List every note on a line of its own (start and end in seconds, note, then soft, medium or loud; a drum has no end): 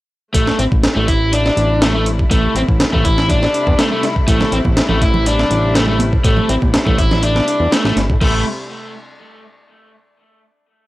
0.34 0.51 A1 loud
0.34 8.17 C3 medium
0.34 8.17 G3 medium
0.34 0.58 A3 medium
0.34 8.17 A3 medium
0.34 8.17 E4 medium
0.34 kick loud
0.34 closed hi-hat medium
0.47 snare soft
0.59 0.68 A1 medium
0.59 0.64 C4 medium
0.59 closed hi-hat medium
0.72 0.88 A1 loud
0.72 kick loud
0.84 snare loud
0.84 closed hi-hat medium
0.96 1.51 A1 loud
0.96 1.07 A3 medium
1.08 1.31 E4 loud
1.08 kick loud
1.08 closed hi-hat medium
1.32 1.80 D4 medium
1.32 closed hi-hat medium
1.46 snare soft
1.57 2.25 A1 medium
1.57 closed hi-hat medium
1.82 1.93 A3 medium
1.82 snare loud
1.82 closed hi-hat medium
1.95 2.05 A3 medium
2.06 closed hi-hat medium
2.19 kick loud
2.31 2.48 A1 loud
2.31 2.54 A3 medium
2.31 kick loud
2.31 closed hi-hat medium
2.55 2.64 A1 medium
2.55 2.60 C4 medium
2.55 closed hi-hat medium
2.68 2.85 A1 loud
2.68 kick loud
2.80 snare loud
2.80 closed hi-hat medium
2.93 3.48 A1 loud
2.93 3.04 A3 medium
2.93 kick loud
3.05 3.28 E4 loud
3.05 kick loud
3.05 closed hi-hat medium
3.18 snare soft
3.29 3.77 D4 medium
3.29 kick loud
3.29 closed hi-hat medium
3.43 snare soft
3.54 closed hi-hat medium
3.67 3.75 E2 loud
3.67 kick medium
3.79 3.90 A3 medium
3.79 snare loud
3.79 closed hi-hat medium
3.92 4.02 A3 medium
4.03 snare soft
4.03 closed hi-hat medium
4.16 kick medium
4.28 4.45 A1 loud
4.28 4.51 A3 medium
4.28 kick loud
4.28 closed hi-hat medium
4.40 snare soft
4.40 low conga medium
4.52 4.61 A1 medium
4.52 4.57 C4 medium
4.52 closed hi-hat medium
4.65 4.81 A1 loud
4.65 kick loud
4.65 high conga medium
4.77 snare loud
4.77 closed hi-hat medium
4.89 5.44 A1 loud
4.89 5.01 A3 medium
4.89 low conga medium
5.02 5.25 E4 loud
5.02 kick loud
5.02 closed hi-hat medium
5.14 low conga loud
5.26 5.74 D4 medium
5.26 closed hi-hat medium
5.39 snare soft
5.39 high conga medium
5.50 6.18 A1 medium
5.50 closed hi-hat medium
5.75 5.87 A3 medium
5.75 snare loud
5.75 closed hi-hat medium
5.88 5.99 A3 medium
5.99 closed hi-hat medium
5.99 high conga loud
6.13 kick loud
6.24 6.42 A1 loud
6.24 6.48 A3 medium
6.24 kick loud
6.24 closed hi-hat medium
6.37 low conga medium
6.49 6.58 A1 medium
6.49 6.54 C4 medium
6.49 closed hi-hat medium
6.62 6.78 A1 loud
6.62 kick loud
6.62 high conga loud
6.74 snare loud
6.74 closed hi-hat medium
6.86 7.41 A1 loud
6.86 6.97 A3 medium
6.86 kick loud
6.86 low conga medium
6.98 7.22 E4 loud
6.98 kick loud
6.98 closed hi-hat medium
7.11 snare soft
7.11 low conga loud
7.23 7.71 D4 medium
7.23 closed hi-hat medium
7.35 snare soft
7.35 high conga medium
7.48 closed hi-hat medium
7.60 7.68 E2 loud
7.72 7.84 A3 medium
7.72 snare loud
7.72 closed hi-hat medium
7.85 7.93 A1 medium
7.85 7.96 A3 medium
7.85 snare soft
7.96 8.11 G1 loud
7.96 snare soft
7.96 closed hi-hat medium
7.96 high conga loud
8.10 8.17 A2 medium
8.10 kick loud
8.21 8.44 A1 loud
8.21 8.44 C3 medium
8.21 8.44 G3 medium
8.21 8.44 A3 medium
8.21 8.44 A3 loud
8.21 8.44 E4 medium
8.21 kick loud
8.21 crash medium